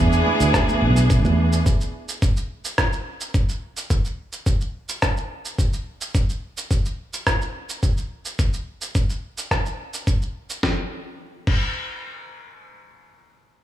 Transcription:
0.00 0.21 E2 loud
0.00 1.64 E3 medium
0.00 1.62 B3 medium
0.00 1.62 D4 medium
0.00 1.64 G#4 medium
0.12 shaker soft
0.27 high conga medium
0.40 0.83 D2 medium
0.40 shaker medium
0.54 kick loud
0.54 cross-stick medium
0.54 shaker medium
0.69 high conga medium
0.69 shaker soft
0.82 1.25 B1 medium
0.97 shaker medium
1.10 kick loud
1.10 shaker medium
1.25 1.61 E2 medium
1.25 high conga medium
1.25 shaker soft
1.53 shaker medium
1.66 kick medium
1.66 shaker medium
1.81 shaker soft
2.09 shaker medium
2.22 kick loud
2.22 shaker soft
2.37 shaker soft
2.65 shaker medium
2.78 kick loud
2.78 cross-stick medium
2.78 shaker medium
2.93 shaker soft
3.21 shaker medium
3.34 kick loud
3.34 shaker soft
3.49 shaker soft
3.77 shaker medium
3.90 kick medium
3.90 shaker medium
4.05 shaker soft
4.33 shaker medium
4.46 kick medium
4.46 shaker medium
4.61 shaker soft
4.89 shaker medium
5.02 kick medium
5.02 cross-stick medium
5.02 shaker medium
5.17 shaker soft
5.45 shaker medium
5.59 kick medium
5.59 shaker soft
5.73 shaker soft
6.01 shaker medium
6.15 kick medium
6.15 shaker medium
6.29 shaker soft
6.57 shaker medium
6.71 kick medium
6.71 shaker soft
6.85 shaker soft
7.13 shaker medium
7.27 kick medium
7.27 cross-stick medium
7.27 shaker soft
7.41 shaker soft
7.69 shaker medium
7.83 kick medium
7.83 shaker soft
7.97 shaker soft
8.25 shaker medium
8.39 kick medium
8.39 shaker soft
8.53 shaker soft
8.81 shaker medium
8.95 kick medium
8.95 shaker soft
9.10 shaker soft
9.38 shaker medium
9.51 kick medium
9.51 cross-stick medium
9.51 shaker soft
9.66 shaker soft
9.94 shaker medium
10.07 kick medium
10.07 shaker soft
10.22 shaker soft
10.50 shaker medium
10.63 kick medium
10.63 snare medium
11.47 kick loud
11.47 crash medium

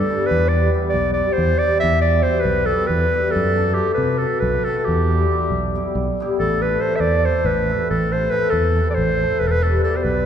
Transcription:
0.00 0.28 A4 medium
0.10 0.36 G3 medium
0.10 0.25 B3 medium
0.10 0.25 D4 medium
0.10 0.26 G4 medium
0.26 0.50 B4 medium
0.31 0.68 E2 medium
0.48 0.71 D5 medium
0.53 0.72 G3 medium
0.53 0.68 B3 medium
0.53 0.68 E4 medium
0.53 0.69 G4 medium
0.74 1.16 G3 medium
0.74 0.88 B3 medium
0.74 0.88 E4 medium
0.74 0.88 G4 medium
0.89 1.13 D5 medium
0.94 1.21 B1 medium
1.14 1.61 G3 medium
1.14 1.32 B3 medium
1.14 1.34 D5 medium
1.18 1.32 E4 medium
1.18 1.33 G4 medium
1.32 1.60 C5 medium
1.38 1.53 E2 medium
1.58 2.02 G3 medium
1.58 1.79 D5 loud
1.63 1.77 B3 medium
1.63 1.77 E4 medium
1.63 1.78 G4 medium
1.80 2.21 E2 medium
1.80 2.01 E5 medium
2.01 2.22 G3 medium
2.01 2.19 B3 medium
2.01 2.19 E4 medium
2.01 2.19 G4 medium
2.01 2.24 D5 medium
2.23 2.67 G3 medium
2.23 2.39 B3 medium
2.23 2.39 E4 medium
2.23 2.39 G4 medium
2.23 2.42 C5 medium
2.41 2.67 B4 medium
2.45 2.72 B1 medium
2.66 3.12 G3 medium
2.66 2.84 B3 medium
2.66 2.84 E4 medium
2.66 2.84 G4 medium
2.66 2.89 A4 medium
2.87 3.04 E2 loud
2.87 3.32 B4 medium
3.13 3.40 G3 medium
3.13 3.29 B3 medium
3.13 3.29 E4 medium
3.13 3.29 G4 medium
3.31 3.76 A4 medium
3.36 3.73 F#2 medium
3.56 3.71 A3 medium
3.56 3.71 C4 medium
3.56 3.72 F#4 medium
3.56 3.72 A4 medium
3.74 3.91 A3 medium
3.74 3.91 C4 medium
3.74 3.92 F#4 medium
3.74 3.94 G4 medium
3.79 3.92 A4 medium
3.94 4.24 C3 medium
3.94 4.19 B4 medium
4.18 4.35 A3 medium
4.18 4.35 C4 medium
4.18 4.36 F#4 medium
4.18 4.41 A4 medium
4.22 4.36 A4 medium
4.40 4.57 B1 loud
4.40 4.66 B4 medium
4.64 4.81 A3 medium
4.64 4.81 C4 medium
4.64 4.82 F#4 medium
4.64 4.78 A4 medium
4.69 4.82 A4 medium
4.78 4.86 A4 medium
4.85 5.25 E2 medium
4.85 5.93 G4 medium
5.09 5.30 G3 medium
5.09 5.24 B3 medium
5.09 5.24 E4 medium
5.09 5.24 G4 medium
5.31 5.74 G3 medium
5.31 5.44 B3 medium
5.31 5.44 E4 medium
5.31 5.44 G4 medium
5.50 5.77 B1 medium
5.75 6.19 G3 medium
5.75 5.89 B3 medium
5.75 5.89 E4 medium
5.75 5.89 G4 medium
5.95 6.09 B1 loud
6.20 6.43 G3 medium
6.20 6.34 B3 medium
6.20 6.34 E4 medium
6.20 6.34 G4 medium
6.39 6.76 A1 medium
6.39 6.63 A4 medium
6.61 6.75 A3 medium
6.61 6.76 C4 medium
6.61 6.76 E4 medium
6.61 6.76 A4 medium
6.61 6.82 B4 medium
6.81 6.95 A3 medium
6.81 6.95 C4 medium
6.81 6.96 E4 medium
6.81 6.96 A4 medium
6.81 6.97 C5 medium
6.96 7.02 E5 medium
7.00 7.27 E2 medium
7.00 7.26 D5 medium
7.24 7.39 A3 medium
7.24 7.39 C4 medium
7.24 7.39 E4 soft
7.24 7.40 A4 medium
7.24 7.47 C5 medium
7.44 7.71 A1 loud
7.44 7.90 B4 medium
7.69 7.84 A3 medium
7.69 7.84 C4 medium
7.69 7.84 E4 medium
7.69 7.84 A4 medium
7.90 8.28 A1 medium
7.90 8.14 A4 medium
8.12 8.26 A3 medium
8.12 8.27 C4 medium
8.12 8.27 E4 medium
8.12 8.27 A4 medium
8.12 8.32 C5 medium
8.31 8.46 A3 medium
8.31 8.46 C4 medium
8.31 8.47 E4 medium
8.31 8.47 A4 medium
8.31 8.51 B4 loud
8.50 8.79 E2 medium
8.50 8.89 A4 medium
8.75 8.90 A3 medium
8.75 8.91 C4 medium
8.75 8.91 E4 medium
8.75 8.91 A4 medium
8.90 8.96 D5 medium
8.94 9.24 A1 medium
8.94 9.41 C5 medium
9.20 9.35 A3 medium
9.20 9.35 C4 medium
9.20 9.36 E4 medium
9.20 9.37 A4 medium
9.39 9.78 E1 medium
9.39 9.49 B4 medium
9.47 9.52 A4 medium
9.47 9.64 B4 loud
9.62 9.83 G3 medium
9.62 9.78 B3 soft
9.62 9.78 E4 medium
9.62 9.79 G4 medium
9.62 9.83 A4 medium
9.84 10.26 G3 medium
9.84 9.99 B3 medium
9.84 9.99 E4 medium
9.84 9.99 G4 medium
9.84 9.98 A4 medium
9.96 10.05 C5 medium
10.03 10.26 B1 medium
10.03 10.26 B4 medium

